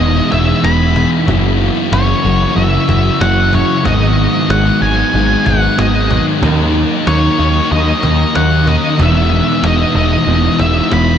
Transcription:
Already playing: E2 B2 E3 D#5
0.00 E1 G#3 B3 D#4 G#4
0.31 E1 B3 D#4 G#4 E5, cajon bass
0.62 E1 E2 B2 E3 G#3 B3 D#4 G#4 B5, cajon slap
0.94 B2 E3 B3 D#4 G#4, cajon bass
1.27 F#1 F#2 C#3 E3 F#3 A#3 E4 F#4, cajon bass
1.60 C#3 F#3
1.91 F#1 F#2 C#3 E3 F#3 A#3 E4 F#4 C#5, cajon slap
2.24 F#1 F#2 C#3 F#3
2.55 F#1 E3 A#3 E4 F#4 E5
2.88 F#1 E3 A#3 E4 F#4, cajon bass
3.19 F#1 F#2 C#3 E3 F#3 A#3 E4 F#4 F#5, cajon slap
3.52 C#3 E3 F#3 A#3 E4 F#4 C#5, cajon bass
3.83 G#1 G#2 D#3 F#3 G#3 B3 D#4 G#4 D#5, cajon bass
4.16 D#3 G#3
4.48 G#1 G#2 D#3 F#3 G#3 B3 D#4 G#4 F#5, cajon slap
4.81 G#1 G#2 D#3 G#3 G#5
5.12 G#1 F#3 B3 D#4 G#4
5.44 G#1 F#3 B3 D#4 G#4 F#5, cajon bass
5.75 G#1 G#2 F#3 B3 D#4 G#4 D#5, cajon slap
5.79 D#3 G#3
6.08 D#3 F#3 G#3 B3 D#4 G#4, cajon bass
6.41 D#2 D#3 F#3 A#3 C#4 D#4 A#4, cajon bass
6.74 A#3 D#4
7.05 D#2 D#3 F#3 A#3 C#4 D#4 A#4 C#5, cajon slap
7.39 D#2 D#3 A#3 D#4
7.70 D#2 F#3 C#4 D#4 A#4 D#5
8.02 D#2 C#4 D#4 A#4, cajon bass
8.33 D#2 D#3 F#3 A#3 C#4 D#4 A#4 F#5, cajon slap
8.37 D#4
8.66 A#3 C#4 D#4 A#4 D#5, cajon bass
8.97 E1 E2 B2 E3 G#3 B3 D#4, cajon bass
9.02 E3 E5
9.31 B2 E3
9.62 E1 E2 B2 E3 G#3 B3 D#4, cajon slap
9.66 D#5
9.95 E1 E2 B2 E3 D#5
10.26 E1 E3 G#3 B3 D#4
10.58 E1 G#3 B3 D#4 E5, cajon bass
10.90 E1 E2 B2 E3 G#3 B3 D#4 B5, cajon slap

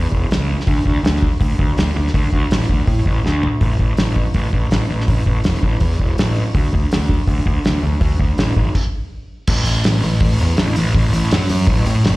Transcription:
0.12 E1, kick
0.31 C#2, snare, open hi-hat
0.60 snare
0.67 D2, kick, open hi-hat
0.86 D2, kick
1.03 D2, snare, open hi-hat
1.16 snare
1.22 kick
1.40 D2, kick, open hi-hat
1.59 D2, kick
1.78 D2, snare, open hi-hat
1.96 D2
2.07 snare
2.14 D2, kick, open hi-hat
2.32 D2, kick
2.51 A1, snare, open hi-hat
2.62 snare
2.69 D2, kick
2.87 A2, kick, open hi-hat
3.06 A1, kick
3.25 D2, snare
3.43 floor tom
3.61 A1, kick, open hi-hat
3.79 A1, kick
3.97 A1, snare, open hi-hat
4.16 kick
4.34 A1, kick, open hi-hat
4.53 A1, kick
4.71 A1, snare, open hi-hat
4.89 A1
5.01 snare
5.08 A1, kick, open hi-hat
5.26 A1, kick
5.44 E1, snare, open hi-hat
5.54 snare
5.63 A1, kick
5.80 E2, kick, open hi-hat
6.00 E1, kick
6.18 A1, snare, open hi-hat
6.55 D2, kick, open hi-hat
6.73 D2, kick
6.91 D2, snare, open hi-hat
7.02 snare
7.09 kick
7.27 D2, kick, open hi-hat
7.46 D2, kick
7.64 D2, snare, open hi-hat
7.83 D2
8.01 D2, kick, open hi-hat
8.20 D2, kick
8.38 A1, snare, open hi-hat
8.56 G#1, kick
8.75 kick, crash
9.47 A1, kick, crash
9.65 A1, open hi-hat
9.84 A1, snare, open hi-hat
10.02 A1, open hi-hat
10.20 A1, kick, open hi-hat
10.38 E2, open hi-hat
10.57 A1, snare, open hi-hat
10.76 A1, open hi-hat
10.95 A1, kick, open hi-hat
11.13 A1, open hi-hat
11.31 F#2, snare, open hi-hat
11.49 F#2, open hi-hat
11.67 A1, kick, open hi-hat
11.86 A2, open hi-hat
12.04 F#1, snare, open hi-hat

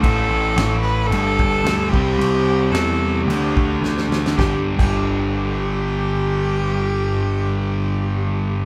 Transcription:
0.01 A1 A2 E3 A4, kick, crash
0.06 A3
0.30 A1
0.57 A1, snare, crash
0.81 B4
1.07 G1 A4
1.12 G2 D3 G3, crash
1.39 G1, kick
1.64 D2, snare, crash
1.90 C2 C3 G4
1.94 G3 C4, kick
2.18 C2, crash
2.71 E2 A4, snare, crash
3.27 D2 D3 G4, crash
3.31 A3 D4
3.56 D2, kick
3.82 D2, snare
3.98 snare
4.09 D2, snare
4.26 snare
4.37 G1 G2 D3 G4, kick, snare
4.41 G3
4.77 G1 G2 D3 G4, kick, crash
4.82 G3

